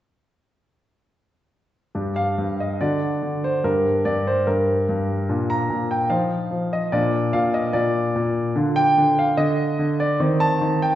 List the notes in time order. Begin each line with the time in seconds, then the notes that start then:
1.95 G2 D4 G4
2.16 F5
2.38 G2
2.60 D#5
2.81 D3 D4 F#4 D5
3.22 D3
3.44 C5
3.64 G2 D4 G4 A#4
4.05 G2 D5
4.27 C5
4.47 G2 A#4
4.89 G2
5.29 A#2 D4 F4
5.50 A#5
5.70 A#2
5.91 G5
6.10 F3 D#4 F4 F5
6.51 F3
6.73 D#5
6.92 A#2 D4 F4 D5
7.33 A#2 F5
7.54 D#5
7.73 A#2 D5
8.16 A#2
8.56 D3 D4 F4
8.76 G5
8.97 D3
9.19 F5
9.37 D3 D#5
9.79 D3
10.00 D5
10.20 D#3 C4 D#4
10.40 A5
10.61 D#3
10.82 G5